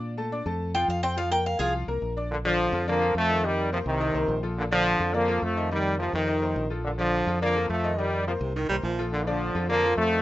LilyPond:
<<
  \new Staff \with { instrumentName = "Cuban tres" } { \time 4/4 \key bes \major \tempo 4 = 211 r2 r8 g''8 f''8 g''8 | f''8 g''8 f''8 <aes' f''>8 r2 | r1 | r1 |
r1 | r1 | r1 | r1 |
r1 | }
  \new Staff \with { instrumentName = "Grand piano" } { \time 4/4 \key bes \major <d' d'' d'''>8 <a a' a''>8 <d' d'' d'''>8 <a a' a''>4 <f f' f''>4 <c' c'' c'''>8 | <f f' f''>8 <bes bes' bes''>4 <f f' f''>4 <bes bes' bes''>4 <d' d'' d'''>8 | r8 <d d' d''>4 <f f' a'>8 <d d' d''>8 <f f' a'>4 <ees ees' ees''>8 | <ees ees' ees''>4 <bes bes' c''>4 <ees ees' ees''>8 <bes bes' c''>4 <f f' a'>8~ |
<f f' a'>8 <d d' d''>4 <f f' a'>8 <d d' d''>8 <f f' a'>4 <ees ees' ees''>8 | <ees ees' ees''>4 <bes bes' c''>4 <ees ees' ees''>8 <bes bes' c''>4 <f f' a'>8~ | <f f' a'>8 <d d' d''>4 <f f' a'>8 <d d' d''>8 <f f' a'>4 <ees ees' ees''>8 | <ees ees' ees''>4 <bes bes' c''>4 <ees ees' ees''>8 <bes bes' c''>4 <f f' a'>8~ |
<f f' a'>8 <d d' d''>4 <f f' a'>8 <d d' d''>8 <f f' a'>4 <ees ees' ees''>8 | }
  \new Staff \with { instrumentName = "Trombone section" } { \clef bass \time 4/4 \key bes \major r1 | r1 | <bes, d>8 <d f>4. <f bes>4 <f a>4 | <ees g>4 <c f>8 <c ees>2 r8 |
<bes, d>8 <d f>4. <f bes>4 <f a>4 | <ees g>4 <c f>8 <c ees>2 r8 | <bes, d>8 <d f>4. <f bes>4 <f a>4 | <ees g>4 <c f>8 r2 r8 |
<bes, d>8 <d f>4. <f bes>4 <f a>4 | }
  \new Staff \with { instrumentName = "Baritone saxophone" } { \clef bass \time 4/4 \key bes \major r1 | r1 | r1 | r1 |
r1 | r1 | r1 | r4. c8 ees8 g8 f8. r16 |
r1 | }
  \new Staff \with { instrumentName = "Fingered electric bass" } { \clef bass \time 4/4 \key bes \major bes,4. f,4. f,4~ | f,4. c,4 c,8 bes,,4~ | bes,,4. f,4. f,4~ | f,4. c,4 c,8 bes,,4~ |
bes,,4. f,4. f,4~ | f,4. f,4. bes,,4~ | bes,,4. f,4. f,4~ | f,4. c,4 c,8 bes,,4~ |
bes,,4. f,4. f,4 | }
>>